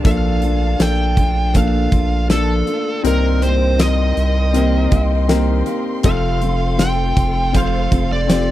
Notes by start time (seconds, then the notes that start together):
Already playing: F5 A5
0.04 A#1 A#2 F3 A3 A#3 D4 F4 A4 F5, kick, closed hi-hat
0.42 A3 D4 F4, closed hi-hat
0.78 A#1 A#3 D4 A4 G5, snare, closed hi-hat
1.17 A3 D4 F4, kick, closed hi-hat
1.54 A#2 F3 A3 A#3 D4 F4 A4 F5, kick, closed hi-hat
1.92 A#1 A3 D4 F4, kick, closed hi-hat
2.29 F3 A3 A#3 D4 F4 A4, snare, closed hi-hat
2.67 A3 D4 F4, closed hi-hat
3.04 C2 G2 C3 D#3 A#3 C4 D#4 G4 A#4 D#5 G5 C6, closed hi-hat
3.42 A#3 C4 G4 C5, closed hi-hat
3.78 C4 D#4 A#4 D#5, snare, closed hi-hat
4.17 C2, closed hi-hat
4.53 C3 D#3 A#3 C4 D#4 G4 A#4, closed hi-hat
4.92 C2 A#3 C4 G4 F5, kick, closed hi-hat
5.10 D#5
5.28 D#3 A#3 C4 D#4 G4 A#4 G5, snare, closed hi-hat
5.66 A#3 C4 G4 F5, closed hi-hat
6.03 F1 F2 C3 F3 A3 C4 F4 A4 C5 F5, kick, closed hi-hat
6.41 F3 A3 C4 F4, closed hi-hat
6.78 C4 F4 A4 G5, snare, closed hi-hat
7.17 F1, kick, closed hi-hat
7.53 F2 C3 F3 A3 C4 F4 C5 F5, kick, closed hi-hat
7.92 F1 F3 A3 C4 F4, kick, closed hi-hat
8.12 D5
8.27 F3 A3 C4 F4 G4, snare, closed hi-hat
8.32 F4